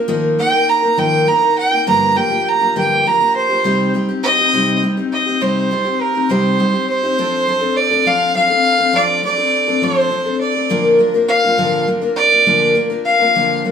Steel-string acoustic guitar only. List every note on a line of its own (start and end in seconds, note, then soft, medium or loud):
0.08 0.38 D#3 medium
0.08 0.37 F3 loud
0.08 0.38 A#3 medium
0.08 0.38 D#4 medium
0.08 0.39 A#4 loud
0.39 0.53 F3 medium
0.39 0.54 A#3 medium
0.39 0.52 D#4 medium
0.39 0.52 A#4 medium
0.53 0.84 A#3 soft
0.53 0.82 D#4 medium
0.53 0.81 A#4 medium
0.82 0.97 A#3 medium
0.82 0.98 D#4 medium
0.82 0.97 A#4 medium
0.98 1.27 D#3 medium
0.98 1.26 F3 medium
0.98 1.27 A#3 medium
0.98 1.28 D#4 medium
0.98 1.28 A#4 medium
1.27 1.42 F3 medium
1.27 1.42 A#3 medium
1.27 1.42 D#4 medium
1.27 1.40 A#4 medium
1.42 1.72 A#3 soft
1.42 1.71 D#4 medium
1.42 1.70 A#4 medium
1.71 1.87 A#3 soft
1.71 1.87 D#4 soft
1.71 1.86 A#4 medium
1.87 2.16 G2 medium
1.87 2.16 D3 medium
1.87 2.14 F3 medium
1.87 2.15 A#3 loud
1.87 2.15 D4 medium
1.87 2.16 G4 medium
2.15 2.30 F3 medium
2.15 2.30 A#3 medium
2.15 2.30 D4 medium
2.15 2.29 G4 medium
2.30 2.61 F3 soft
2.30 2.61 A#3 soft
2.30 2.60 D4 soft
2.30 2.59 G4 medium
2.60 2.75 F3 soft
2.60 2.75 A#3 soft
2.60 2.75 D4 medium
2.60 2.75 G4 medium
2.76 3.05 G2 medium
2.76 3.05 D3 medium
2.76 3.04 F3 medium
2.76 3.05 A#3 medium
2.76 3.06 D4 medium
2.76 3.06 G4 medium
3.05 3.20 F3 medium
3.05 3.20 A#3 medium
3.05 3.20 D4 medium
3.05 3.19 G4 medium
3.20 3.50 F3 soft
3.20 3.49 A#3 medium
3.20 3.48 D4 medium
3.20 3.48 G4 medium
3.49 3.64 F3 soft
3.49 3.65 A#3 soft
3.49 3.64 D4 medium
3.49 3.64 G4 medium
3.64 3.94 C3 medium
3.64 3.93 G3 medium
3.64 3.93 C4 medium
3.64 3.94 D#4 loud
3.64 3.94 G4 loud
3.94 4.09 G3 medium
3.94 4.09 C4 medium
3.94 4.08 D#4 medium
3.94 4.07 G4 medium
4.09 4.39 C4 soft
4.09 4.38 D#4 soft
4.09 4.37 G4 medium
4.38 4.53 C4 medium
4.38 4.53 D#4 medium
4.38 4.53 G4 medium
4.53 4.82 C3 medium
4.53 4.81 G3 medium
4.53 4.82 C4 medium
4.53 4.83 D#4 medium
4.53 4.83 G4 loud
4.83 4.97 G3 medium
4.83 4.97 C4 medium
4.83 4.97 D#4 medium
4.83 4.96 G4 medium
4.97 5.27 C4 soft
4.97 5.27 D#4 medium
4.97 5.25 G4 medium
5.26 5.40 C4 soft
5.26 5.41 D#4 medium
5.26 5.41 G4 medium
5.41 5.70 C3 medium
5.41 5.70 G3 medium
5.41 5.71 C4 medium
5.41 5.71 D#4 medium
5.41 5.71 G4 medium
5.71 5.86 G3 medium
5.71 5.86 C4 medium
5.71 5.85 D#4 medium
5.71 5.83 G4 medium
5.85 6.15 C4 soft
5.85 6.15 D#4 medium
5.85 6.14 G4 medium
6.15 6.29 C4 medium
6.15 6.29 D#4 medium
6.15 6.30 G4 medium
6.29 6.59 C3 medium
6.29 6.58 G3 medium
6.29 6.58 C4 medium
6.29 6.59 D#4 loud
6.29 6.59 G4 loud
6.59 6.74 G3 medium
6.59 6.74 C4 medium
6.59 6.74 D#4 medium
6.59 6.73 G4 medium
6.74 7.04 C4 soft
6.74 7.02 D#4 soft
6.74 7.02 G4 medium
7.03 7.17 C4 soft
7.03 7.18 D#4 medium
7.03 7.18 G4 medium
7.18 7.46 F3 medium
7.18 7.47 C4 medium
7.18 7.47 D4 medium
7.18 7.48 A4 medium
7.47 7.62 F3 medium
7.47 7.62 C4 medium
7.47 7.61 D4 medium
7.47 7.60 A4 medium
7.61 7.92 C4 soft
7.61 7.91 D4 medium
7.61 7.89 A4 medium
7.91 8.05 C4 medium
7.91 8.06 D4 medium
7.91 8.06 A4 medium
8.06 8.33 F3 medium
8.06 8.34 C4 medium
8.06 8.34 D4 medium
8.06 8.35 A4 medium
8.34 8.49 F3 medium
8.34 8.50 C4 medium
8.34 8.50 D4 medium
8.34 8.49 A4 medium
8.50 8.79 C4 soft
8.50 8.78 D4 medium
8.50 8.77 A4 medium
8.78 8.92 C4 medium
8.78 8.92 D4 soft
8.78 8.93 A4 medium
8.93 9.22 F3 medium
8.93 9.22 C4 medium
8.93 9.23 D4 medium
8.93 9.23 A4 medium
9.23 9.38 F3 medium
9.23 9.38 C4 medium
9.23 9.38 D4 medium
9.23 9.36 A4 medium
9.38 9.68 C4 soft
9.38 9.68 D4 medium
9.38 9.67 A4 medium
9.68 9.82 C4 medium
9.68 9.82 D4 medium
9.68 9.82 A4 medium
9.82 10.10 F3 medium
9.82 10.11 C4 medium
9.82 10.11 D4 medium
9.82 10.12 A4 medium
10.11 10.26 F3 medium
10.11 10.26 C4 medium
10.11 10.26 D4 medium
10.11 10.25 A4 medium
10.26 10.56 C4 medium
10.26 10.56 D4 soft
10.26 10.54 A4 medium
10.55 10.70 C4 soft
10.55 10.70 D4 soft
10.55 10.70 A4 medium
10.70 10.99 A#2 medium
10.70 11.00 D3 medium
10.70 10.98 F3 medium
10.70 10.98 A#3 medium
10.70 10.99 D4 medium
10.70 10.99 A#4 loud
10.99 11.14 F3 medium
10.99 11.14 A#3 medium
10.99 11.14 D4 medium
10.99 11.13 A#4 medium
11.14 11.45 F3 soft
11.14 11.44 A#3 soft
11.14 11.43 D4 medium
11.14 11.42 A#4 medium
11.43 11.57 F3 soft
11.43 11.57 A#3 medium
11.43 11.58 D4 medium
11.43 11.58 A#4 medium
11.58 11.88 A#2 medium
11.58 11.88 D3 medium
11.58 11.86 F3 medium
11.58 11.87 A#3 medium
11.58 11.87 D4 medium
11.58 11.88 A#4 medium
11.87 12.02 F3 medium
11.87 12.02 A#3 medium
11.87 12.01 D4 medium
11.87 12.00 A#4 medium
12.01 12.32 F3 soft
12.01 12.32 A#3 medium
12.01 12.31 D4 medium
12.01 12.30 A#4 medium
12.31 12.45 F3 soft
12.31 12.46 A#3 medium
12.31 12.46 D4 medium
12.31 12.46 A#4 medium
12.46 12.76 A#2 medium
12.46 12.76 D3 medium
12.46 12.74 F3 medium
12.46 12.74 A#3 medium
12.46 12.75 D4 loud
12.46 12.76 A#4 medium
12.75 12.90 F3 medium
12.75 12.90 A#3 medium
12.75 12.89 D4 medium
12.75 12.89 A#4 medium
12.90 13.21 F3 soft
12.90 13.20 A#3 medium
12.90 13.19 D4 soft
12.90 13.18 A#4 medium
13.20 13.35 F3 medium
13.20 13.35 A#3 medium
13.20 13.35 D4 medium
13.20 13.35 A#4 medium
13.35 13.65 A#2 medium
13.35 13.65 D3 medium
13.35 13.63 F3 medium
13.35 13.64 A#3 medium
13.35 13.65 D4 medium
13.35 13.65 A#4 medium
13.65 13.71 F3 medium
13.65 13.71 A#3 medium
13.65 13.71 D4 medium
13.65 13.71 A#4 medium